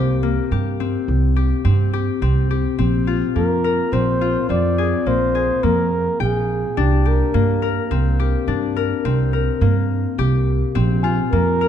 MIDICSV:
0, 0, Header, 1, 5, 480
1, 0, Start_track
1, 0, Tempo, 569260
1, 2351, Time_signature, 7, 2, 24, 8
1, 9851, End_track
2, 0, Start_track
2, 0, Title_t, "Celesta"
2, 0, Program_c, 0, 8
2, 9301, Note_on_c, 0, 80, 61
2, 9851, Note_off_c, 0, 80, 0
2, 9851, End_track
3, 0, Start_track
3, 0, Title_t, "Flugelhorn"
3, 0, Program_c, 1, 56
3, 0, Note_on_c, 1, 72, 72
3, 161, Note_off_c, 1, 72, 0
3, 2837, Note_on_c, 1, 70, 79
3, 3311, Note_on_c, 1, 72, 78
3, 3323, Note_off_c, 1, 70, 0
3, 3790, Note_off_c, 1, 72, 0
3, 3795, Note_on_c, 1, 74, 87
3, 4277, Note_on_c, 1, 72, 83
3, 4289, Note_off_c, 1, 74, 0
3, 4755, Note_on_c, 1, 70, 78
3, 4768, Note_off_c, 1, 72, 0
3, 5232, Note_off_c, 1, 70, 0
3, 5238, Note_on_c, 1, 68, 68
3, 5719, Note_on_c, 1, 67, 67
3, 5732, Note_off_c, 1, 68, 0
3, 5964, Note_on_c, 1, 70, 64
3, 5977, Note_off_c, 1, 67, 0
3, 6917, Note_off_c, 1, 70, 0
3, 9549, Note_on_c, 1, 70, 82
3, 9851, Note_off_c, 1, 70, 0
3, 9851, End_track
4, 0, Start_track
4, 0, Title_t, "Harp"
4, 0, Program_c, 2, 46
4, 0, Note_on_c, 2, 58, 62
4, 0, Note_on_c, 2, 60, 79
4, 0, Note_on_c, 2, 67, 78
4, 189, Note_off_c, 2, 58, 0
4, 193, Note_on_c, 2, 58, 62
4, 433, Note_off_c, 2, 67, 0
4, 436, Note_on_c, 2, 67, 62
4, 672, Note_off_c, 2, 60, 0
4, 675, Note_on_c, 2, 60, 62
4, 1146, Note_off_c, 2, 67, 0
4, 1150, Note_on_c, 2, 67, 57
4, 1385, Note_off_c, 2, 60, 0
4, 1388, Note_on_c, 2, 60, 65
4, 1627, Note_off_c, 2, 67, 0
4, 1631, Note_on_c, 2, 67, 65
4, 1869, Note_off_c, 2, 60, 0
4, 1873, Note_on_c, 2, 60, 78
4, 2109, Note_off_c, 2, 67, 0
4, 2112, Note_on_c, 2, 67, 59
4, 2345, Note_off_c, 2, 60, 0
4, 2348, Note_on_c, 2, 60, 66
4, 2590, Note_on_c, 2, 65, 59
4, 2827, Note_off_c, 2, 58, 0
4, 2830, Note_on_c, 2, 58, 57
4, 3071, Note_on_c, 2, 70, 62
4, 3308, Note_off_c, 2, 60, 0
4, 3312, Note_on_c, 2, 60, 71
4, 3549, Note_off_c, 2, 65, 0
4, 3552, Note_on_c, 2, 65, 59
4, 3790, Note_off_c, 2, 60, 0
4, 3793, Note_on_c, 2, 60, 57
4, 4032, Note_on_c, 2, 68, 61
4, 4083, Note_off_c, 2, 67, 0
4, 4267, Note_off_c, 2, 58, 0
4, 4270, Note_on_c, 2, 58, 59
4, 4506, Note_off_c, 2, 68, 0
4, 4510, Note_on_c, 2, 68, 58
4, 4744, Note_off_c, 2, 58, 0
4, 4748, Note_on_c, 2, 58, 62
4, 4860, Note_off_c, 2, 70, 0
4, 5228, Note_on_c, 2, 79, 73
4, 5279, Note_off_c, 2, 68, 0
4, 5679, Note_off_c, 2, 65, 0
4, 5709, Note_on_c, 2, 62, 79
4, 5949, Note_on_c, 2, 67, 66
4, 6186, Note_off_c, 2, 58, 0
4, 6190, Note_on_c, 2, 58, 74
4, 6323, Note_off_c, 2, 60, 0
4, 6426, Note_on_c, 2, 70, 69
4, 6537, Note_off_c, 2, 79, 0
4, 6668, Note_on_c, 2, 60, 76
4, 6907, Note_off_c, 2, 67, 0
4, 6910, Note_on_c, 2, 67, 69
4, 7144, Note_off_c, 2, 62, 0
4, 7148, Note_on_c, 2, 62, 60
4, 7387, Note_off_c, 2, 70, 0
4, 7390, Note_on_c, 2, 70, 64
4, 7627, Note_off_c, 2, 60, 0
4, 7631, Note_on_c, 2, 60, 76
4, 7864, Note_off_c, 2, 70, 0
4, 7867, Note_on_c, 2, 70, 57
4, 8104, Note_off_c, 2, 58, 0
4, 8108, Note_on_c, 2, 58, 61
4, 8586, Note_off_c, 2, 67, 0
4, 8589, Note_on_c, 2, 67, 76
4, 9061, Note_off_c, 2, 60, 0
4, 9065, Note_on_c, 2, 60, 79
4, 9306, Note_on_c, 2, 65, 64
4, 9508, Note_off_c, 2, 62, 0
4, 9547, Note_off_c, 2, 58, 0
4, 9550, Note_on_c, 2, 58, 67
4, 9656, Note_off_c, 2, 70, 0
4, 9790, Note_on_c, 2, 70, 69
4, 9851, Note_off_c, 2, 58, 0
4, 9851, Note_off_c, 2, 60, 0
4, 9851, Note_off_c, 2, 65, 0
4, 9851, Note_off_c, 2, 67, 0
4, 9851, Note_off_c, 2, 70, 0
4, 9851, End_track
5, 0, Start_track
5, 0, Title_t, "Upright bass"
5, 0, Program_c, 3, 32
5, 0, Note_on_c, 3, 36, 76
5, 317, Note_off_c, 3, 36, 0
5, 433, Note_on_c, 3, 43, 78
5, 796, Note_off_c, 3, 43, 0
5, 911, Note_on_c, 3, 36, 81
5, 1275, Note_off_c, 3, 36, 0
5, 1390, Note_on_c, 3, 43, 86
5, 1754, Note_off_c, 3, 43, 0
5, 1869, Note_on_c, 3, 36, 82
5, 2233, Note_off_c, 3, 36, 0
5, 2350, Note_on_c, 3, 34, 82
5, 2714, Note_off_c, 3, 34, 0
5, 2830, Note_on_c, 3, 41, 68
5, 3194, Note_off_c, 3, 41, 0
5, 3305, Note_on_c, 3, 34, 85
5, 3671, Note_off_c, 3, 34, 0
5, 3785, Note_on_c, 3, 41, 80
5, 4151, Note_off_c, 3, 41, 0
5, 4265, Note_on_c, 3, 34, 75
5, 4631, Note_off_c, 3, 34, 0
5, 4750, Note_on_c, 3, 41, 88
5, 5114, Note_off_c, 3, 41, 0
5, 5226, Note_on_c, 3, 34, 88
5, 5592, Note_off_c, 3, 34, 0
5, 5711, Note_on_c, 3, 36, 91
5, 6075, Note_off_c, 3, 36, 0
5, 6192, Note_on_c, 3, 43, 72
5, 6555, Note_off_c, 3, 43, 0
5, 6668, Note_on_c, 3, 36, 84
5, 7033, Note_off_c, 3, 36, 0
5, 7145, Note_on_c, 3, 43, 74
5, 7511, Note_off_c, 3, 43, 0
5, 7629, Note_on_c, 3, 36, 80
5, 7993, Note_off_c, 3, 36, 0
5, 8104, Note_on_c, 3, 43, 88
5, 8470, Note_off_c, 3, 43, 0
5, 8586, Note_on_c, 3, 36, 90
5, 8951, Note_off_c, 3, 36, 0
5, 9069, Note_on_c, 3, 34, 98
5, 9433, Note_off_c, 3, 34, 0
5, 9547, Note_on_c, 3, 41, 77
5, 9851, Note_off_c, 3, 41, 0
5, 9851, End_track
0, 0, End_of_file